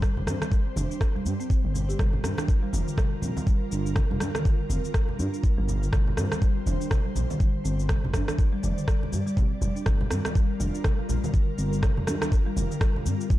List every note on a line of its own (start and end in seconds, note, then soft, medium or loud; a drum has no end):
0.00 5.89 G3 medium
0.00 0.10 G3 medium
0.00 1.95 C5 medium
0.00 kick loud
0.00 cross-stick medium
0.00 high conga medium
0.00 cabasa soft
0.16 0.23 F1 medium
0.16 low conga medium
0.27 0.35 G2 medium
0.27 0.35 C4 medium
0.27 cross-stick medium
0.27 high conga medium
0.27 cabasa medium
0.42 cross-stick medium
0.42 high conga loud
0.42 cabasa soft
0.52 0.65 G3 medium
0.52 kick loud
0.52 cabasa soft
0.76 0.84 F1 loud
0.76 0.89 D4 medium
0.76 high conga loud
0.76 cabasa medium
0.91 0.96 D4 medium
0.91 cabasa soft
1.01 kick loud
1.01 cross-stick medium
1.01 cabasa soft
1.15 1.21 G3 loud
1.15 low conga medium
1.25 1.34 G2 medium
1.25 cabasa medium
1.40 1.45 C4 medium
1.40 cabasa soft
1.50 1.63 C4 medium
1.50 kick loud
1.50 cabasa soft
1.64 1.94 G1 medium
1.74 1.88 G3 medium
1.74 low conga medium
1.74 cabasa medium
1.89 1.99 G4 medium
1.89 cabasa medium
1.99 2.17 G1 loud
1.99 2.13 G3 medium
1.99 5.89 F4 medium
1.99 5.89 A#4 medium
1.99 kick loud
1.99 cross-stick medium
1.99 mid tom medium
1.99 cabasa soft
2.13 low conga medium
2.24 2.32 G2 medium
2.24 2.37 D4 medium
2.24 cross-stick medium
2.24 high conga loud
2.24 cabasa medium
2.38 2.44 D4 medium
2.38 cross-stick medium
2.38 high conga loud
2.38 cabasa soft
2.48 kick loud
2.48 cabasa soft
2.63 2.68 G3 loud
2.73 2.81 F1 loud
2.73 high conga loud
2.73 cabasa medium
2.87 2.96 D3 medium
2.87 cabasa soft
2.97 3.05 G3 medium
2.97 kick loud
2.97 cross-stick medium
2.97 mid tom medium
2.97 cabasa soft
3.22 3.30 A#1 medium
3.22 3.30 C4 medium
3.22 low conga medium
3.22 cabasa medium
3.37 high conga loud
3.37 low conga medium
3.37 cabasa soft
3.47 3.61 G3 medium
3.47 kick loud
3.47 cabasa soft
3.71 4.03 G1 medium
3.71 3.84 D4 medium
3.71 cabasa medium
3.86 3.91 D4 medium
3.86 cabasa medium
3.96 kick loud
3.96 cross-stick medium
3.96 mid tom medium
3.96 high conga medium
3.96 cabasa soft
4.10 4.17 F1 medium
4.10 4.16 G3 medium
4.10 low conga medium
4.20 4.29 G2 medium
4.20 cross-stick medium
4.20 high conga medium
4.20 cabasa medium
4.35 4.44 D3 medium
4.35 cross-stick medium
4.35 high conga medium
4.35 cabasa soft
4.45 4.53 G3 medium
4.45 kick loud
4.45 cabasa soft
4.69 4.78 F1 loud
4.69 4.77 C4 medium
4.69 high conga loud
4.69 cabasa medium
4.85 cabasa soft
4.94 5.08 G3 medium
4.94 kick loud
4.94 cross-stick medium
4.94 cabasa soft
5.09 low conga medium
5.19 5.27 G2 medium
5.19 5.32 D4 medium
5.19 cabasa medium
5.33 5.39 D4 medium
5.33 cabasa soft
5.44 kick loud
5.44 cabasa soft
5.58 5.87 G1 medium
5.58 5.63 G3 medium
5.69 low conga medium
5.69 cabasa medium
5.82 5.92 D3 medium
5.82 cabasa soft
5.92 6.11 G1 loud
5.92 6.00 G3 medium
5.92 13.39 G3 medium
5.92 7.87 C5 medium
5.92 kick loud
5.92 cross-stick medium
5.92 mid tom medium
5.92 cabasa soft
6.07 low conga loud
6.17 6.25 G2 medium
6.17 6.25 C4 medium
6.17 cross-stick medium
6.17 high conga medium
6.17 cabasa medium
6.32 cross-stick medium
6.32 high conga medium
6.32 cabasa soft
6.42 6.55 G3 medium
6.42 kick loud
6.42 cabasa soft
6.66 6.75 F1 medium
6.66 6.79 D4 medium
6.66 high conga loud
6.66 cabasa medium
6.80 6.86 D4 medium
6.80 cabasa soft
6.91 kick loud
6.91 cross-stick medium
6.91 mid tom medium
6.91 cabasa soft
7.05 7.11 G3 loud
7.15 7.24 A#1 medium
7.15 low conga loud
7.15 cabasa medium
7.29 7.39 D3 medium
7.29 high conga loud
7.29 low conga medium
7.29 cabasa soft
7.39 7.48 G3 medium
7.39 kick loud
7.39 cabasa soft
7.64 7.96 G1 medium
7.64 7.72 C4 medium
7.64 cabasa medium
7.79 cabasa soft
7.89 8.03 G3 medium
7.89 9.84 D5 medium
7.89 kick loud
7.89 cross-stick medium
7.89 mid tom medium
7.89 high conga medium
7.89 cabasa soft
8.04 8.11 F1 medium
8.04 low conga loud
8.14 8.22 G2 medium
8.14 8.27 D4 medium
8.14 kick medium
8.14 cross-stick medium
8.14 high conga medium
8.14 cabasa medium
8.28 8.34 D4 medium
8.28 cross-stick medium
8.28 high conga loud
8.28 cabasa soft
8.38 kick loud
8.38 cabasa soft
8.53 8.58 G3 loud
8.63 8.71 F1 loud
8.63 high conga loud
8.63 cabasa medium
8.77 8.87 D3 medium
8.77 cabasa soft
8.88 kick loud
8.88 cross-stick medium
8.88 cabasa soft
9.03 low conga medium
9.12 9.21 G2 medium
9.12 9.25 G3 medium
9.12 high conga medium
9.12 cabasa medium
9.26 9.36 G3 loud
9.26 cabasa soft
9.37 9.45 C4 medium
9.37 kick loud
9.37 mid tom medium
9.37 cabasa soft
9.61 9.70 F1 loud
9.61 9.74 G3 medium
9.61 low conga medium
9.61 cabasa medium
9.76 9.85 D4 medium
9.76 cabasa soft
9.86 10.04 G1 loud
9.86 9.94 G3 medium
9.86 13.39 F4 medium
9.86 13.39 A#4 medium
9.86 kick loud
9.86 cross-stick medium
9.86 mid tom medium
9.86 cabasa soft
10.01 low conga loud
10.11 10.19 G2 medium
10.11 10.19 C4 medium
10.11 cross-stick medium
10.11 high conga medium
10.11 cabasa medium
10.25 cross-stick medium
10.25 high conga medium
10.25 cabasa medium
10.35 10.49 G3 medium
10.35 kick loud
10.35 cabasa soft
10.60 10.68 F1 loud
10.60 10.73 D4 medium
10.60 high conga medium
10.60 cabasa medium
10.74 10.80 D4 medium
10.74 cabasa soft
10.84 kick loud
10.84 cross-stick medium
10.84 mid tom medium
10.84 cabasa soft
10.99 11.04 G3 loud
11.09 11.17 A#1 medium
11.09 low conga loud
11.09 cabasa medium
11.24 11.33 D3 medium
11.24 high conga medium
11.24 low conga medium
11.24 cabasa soft
11.34 11.41 G3 medium
11.34 kick loud
11.34 cabasa soft
11.58 11.90 G1 medium
11.58 11.66 C4 medium
11.58 cabasa medium
11.73 cabasa medium
11.82 11.96 G3 medium
11.82 kick loud
11.82 cross-stick medium
11.82 mid tom medium
11.82 high conga medium
11.82 cabasa soft
11.97 12.04 F1 medium
11.97 low conga loud
12.07 12.16 G2 medium
12.07 12.20 D4 medium
12.07 cross-stick medium
12.07 high conga loud
12.07 cabasa medium
12.21 12.27 D4 medium
12.21 cross-stick loud
12.21 high conga loud
12.21 cabasa medium
12.32 kick loud
12.32 cabasa soft
12.46 12.52 G3 loud
12.56 12.65 F1 medium
12.56 high conga loud
12.56 cabasa medium
12.71 12.80 D3 medium
12.71 cabasa medium
12.81 12.89 G3 medium
12.81 kick loud
12.81 cross-stick loud
12.81 cabasa soft
12.96 low conga medium
13.05 13.14 G2 medium
13.05 13.13 C4 medium
13.05 cabasa medium
13.21 cabasa medium
13.30 13.39 G3 medium
13.30 kick loud
13.30 cabasa soft